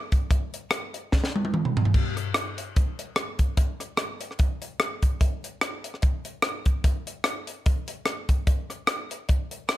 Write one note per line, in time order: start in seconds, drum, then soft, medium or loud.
0.12 kick medium
0.12 closed hi-hat medium
0.31 kick medium
0.31 closed hi-hat medium
0.54 closed hi-hat medium
0.71 cross-stick loud
0.71 closed hi-hat medium
0.94 closed hi-hat medium
1.12 kick medium
1.12 snare soft
1.24 snare medium
1.36 high tom medium
1.45 high tom medium
1.54 mid tom medium
1.65 mid tom medium
1.77 floor tom loud
1.85 floor tom medium
1.94 kick medium
1.94 crash medium
2.17 cross-stick soft
2.17 closed hi-hat medium
2.34 cross-stick loud
2.34 closed hi-hat medium
2.58 closed hi-hat medium
2.76 kick loud
2.76 closed hi-hat medium
2.99 closed hi-hat medium
3.16 cross-stick loud
3.16 closed hi-hat medium
3.39 kick medium
3.39 closed hi-hat medium
3.57 kick loud
3.57 closed hi-hat medium
3.80 cross-stick soft
3.80 closed hi-hat medium
3.97 cross-stick loud
3.97 closed hi-hat medium
4.21 closed hi-hat medium
4.31 cross-stick soft
4.39 kick medium
4.39 closed hi-hat medium
4.62 closed hi-hat medium
4.80 cross-stick loud
4.80 closed hi-hat medium
5.02 kick medium
5.02 closed hi-hat medium
5.21 kick medium
5.21 closed hi-hat medium
5.44 closed hi-hat medium
5.61 cross-stick loud
5.61 closed hi-hat medium
5.84 closed hi-hat medium
5.94 cross-stick soft
6.02 kick loud
6.02 closed hi-hat medium
6.25 closed hi-hat medium
6.42 cross-stick loud
6.42 closed hi-hat medium
6.66 kick medium
6.66 closed hi-hat medium
6.84 kick loud
6.84 closed hi-hat medium
7.07 closed hi-hat medium
7.24 cross-stick loud
7.24 closed hi-hat medium
7.47 closed hi-hat medium
7.66 kick loud
7.66 closed hi-hat medium
7.88 closed hi-hat medium
8.06 cross-stick medium
8.06 closed hi-hat medium
8.29 kick medium
8.29 closed hi-hat medium
8.47 kick loud
8.47 closed hi-hat medium
8.70 cross-stick soft
8.70 closed hi-hat medium
8.87 cross-stick loud
8.87 closed hi-hat medium
9.11 closed hi-hat medium
9.29 kick medium
9.29 closed hi-hat medium
9.51 closed hi-hat medium
9.69 cross-stick medium
9.69 closed hi-hat medium